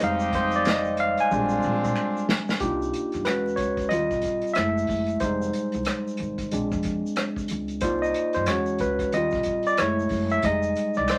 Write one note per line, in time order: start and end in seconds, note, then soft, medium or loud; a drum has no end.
0.00 1.15 F1 loud
0.00 0.95 G3 medium
0.00 0.95 G#3 soft
0.00 0.96 C4 medium
0.00 0.96 D#4 medium
0.00 0.96 G4 medium
0.00 0.36 F5 medium
0.00 closed hi-hat medium
0.20 shaker medium
0.33 0.55 C5 medium
0.33 kick medium
0.33 closed hi-hat medium
0.33 shaker soft
0.51 closed hi-hat soft
0.51 shaker soft
0.56 0.67 D5 medium
0.65 1.01 D#5 medium
0.65 finger snap medium
0.65 snare loud
0.65 closed hi-hat medium
0.65 shaker medium
0.85 shaker soft
0.97 1.20 F5 loud
0.97 closed hi-hat medium
1.17 2.13 G#5 medium
1.17 closed hi-hat soft
1.17 shaker soft
1.30 1.58 A#1 loud
1.30 2.25 G3 medium
1.30 2.25 G#3 medium
1.30 2.26 C4 medium
1.30 2.25 C4 medium
1.30 2.26 D4 medium
1.30 2.26 F4 medium
1.30 shaker medium
1.49 shaker soft
1.62 1.81 A#1 loud
1.62 shaker soft
1.84 1.94 A#2 loud
1.84 shaker medium
1.96 finger snap medium
1.96 shaker medium
2.17 shaker soft
2.29 snare loud
2.49 snare medium
2.49 shaker soft
2.60 2.88 C2 loud
2.60 3.23 A#3 soft
2.60 3.23 D4 soft
2.60 3.24 D#4 soft
2.60 3.24 F4 medium
2.60 3.22 G4 medium
2.60 kick medium
2.60 closed hi-hat medium
2.60 shaker medium
2.82 shaker soft
2.93 closed hi-hat medium
2.93 shaker soft
3.12 3.26 G2 medium
3.12 cross-stick soft
3.12 closed hi-hat soft
3.12 shaker soft
3.25 3.54 E2 medium
3.25 3.73 G#3 soft
3.25 3.73 C#4 soft
3.25 3.73 F#4 soft
3.25 3.56 B4 medium
3.25 finger snap medium
3.25 cross-stick loud
3.25 closed hi-hat medium
3.25 shaker medium
3.47 shaker soft
3.56 3.86 C#2 medium
3.56 3.91 C#5 medium
3.56 kick medium
3.56 closed hi-hat soft
3.62 shaker soft
3.77 kick medium
3.77 closed hi-hat soft
3.77 shaker soft
3.89 4.12 D#2 medium
3.89 4.53 G3 soft
3.89 4.54 C4 soft
3.89 4.54 F4 medium
3.89 4.51 D#5 medium
3.89 closed hi-hat medium
3.89 shaker medium
4.11 4.39 A#1 medium
4.11 kick medium
4.11 shaker soft
4.22 kick medium
4.22 closed hi-hat medium
4.22 shaker soft
4.42 closed hi-hat soft
4.47 shaker soft
4.54 4.84 F#1 medium
4.54 5.19 G#3 soft
4.54 5.19 A3 soft
4.54 5.22 E5 medium
4.54 finger snap medium
4.54 cross-stick loud
4.54 closed hi-hat medium
4.54 shaker soft
4.58 5.19 E4 medium
4.78 shaker soft
4.87 5.16 F#1 medium
4.87 kick medium
4.87 open hi-hat medium
4.87 shaker soft
5.06 closed hi-hat soft
5.06 shaker soft
5.20 5.49 F1 loud
5.20 6.16 G3 soft
5.20 6.17 G#3 soft
5.20 6.48 C5 medium
5.20 kick medium
5.20 closed hi-hat medium
5.20 shaker medium
5.24 6.17 D#4 medium
5.42 shaker medium
5.53 closed hi-hat medium
5.53 shaker soft
5.72 5.85 C2 medium
5.72 closed hi-hat soft
5.72 shaker soft
5.85 finger snap medium
5.85 cross-stick loud
5.85 closed hi-hat medium
5.85 shaker medium
6.08 shaker soft
6.17 6.47 G#1 medium
6.17 closed hi-hat soft
6.22 shaker soft
6.38 kick medium
6.38 closed hi-hat soft
6.38 shaker soft
6.51 6.69 A#1 medium
6.51 7.79 G#3 medium
6.51 7.79 C4 medium
6.51 7.79 D4 medium
6.51 closed hi-hat medium
6.51 shaker medium
6.72 7.00 F2 medium
6.72 kick medium
6.72 cross-stick soft
6.72 shaker soft
6.83 kick medium
6.83 closed hi-hat medium
6.83 shaker soft
7.06 shaker soft
7.16 finger snap medium
7.16 cross-stick loud
7.16 closed hi-hat medium
7.16 shaker medium
7.36 kick medium
7.36 shaker soft
7.48 7.82 C#2 medium
7.48 closed hi-hat medium
7.48 shaker soft
7.68 closed hi-hat soft
7.68 shaker soft
7.81 8.10 C2 loud
7.81 8.45 A#3 medium
7.81 8.45 D#4 soft
7.81 8.46 F4 medium
7.81 8.03 C5 medium
7.81 8.45 D5 soft
7.81 kick loud
7.81 closed hi-hat medium
7.81 shaker medium
8.02 8.33 D#5 medium
8.02 shaker medium
8.14 closed hi-hat medium
8.14 shaker soft
8.33 8.48 G2 medium
8.33 8.48 C5 medium
8.33 cross-stick soft
8.33 closed hi-hat soft
8.33 shaker soft
8.46 8.76 E2 medium
8.46 9.10 G#3 medium
8.46 9.11 C#4 soft
8.46 8.82 C#5 medium
8.46 finger snap medium
8.46 cross-stick medium
8.46 closed hi-hat medium
8.46 shaker medium
8.50 9.11 F#4 medium
8.66 shaker soft
8.78 9.08 C#2 medium
8.78 9.14 B4 medium
8.78 kick medium
8.78 closed hi-hat medium
8.78 shaker soft
8.99 kick medium
8.99 closed hi-hat soft
8.99 shaker soft
9.12 9.33 D#2 medium
9.12 9.76 G3 medium
9.12 9.76 C4 soft
9.12 9.77 F4 medium
9.12 9.62 D#5 medium
9.12 closed hi-hat medium
9.12 shaker medium
9.31 9.61 A#1 medium
9.31 kick medium
9.31 shaker soft
9.43 kick medium
9.43 closed hi-hat medium
9.43 shaker soft
9.63 9.78 D5 medium
9.63 closed hi-hat soft
9.63 shaker medium
9.77 10.06 F#1 medium
9.77 10.26 G#3 medium
9.77 10.26 A3 medium
9.77 10.33 C#5 medium
9.77 finger snap medium
9.77 cross-stick loud
9.77 closed hi-hat medium
9.77 shaker medium
9.82 10.26 E4 medium
10.00 shaker soft
10.09 10.38 F#1 medium
10.09 kick medium
10.09 open hi-hat medium
10.09 shaker soft
10.30 10.44 E5 medium
10.30 closed hi-hat soft
10.30 shaker soft
10.42 10.71 F1 loud
10.42 11.18 G3 medium
10.42 11.18 G#3 medium
10.42 10.98 D#5 loud
10.42 kick loud
10.42 closed hi-hat medium
10.42 shaker medium
10.46 11.18 D#4 medium
10.62 shaker medium
10.76 closed hi-hat medium
10.76 shaker soft
10.94 11.07 C2 medium
10.94 11.09 D5 medium
10.94 cross-stick soft
10.94 shaker soft
11.08 11.18 C5 medium
11.08 finger snap medium
11.08 cross-stick loud
11.08 closed hi-hat medium
11.08 shaker medium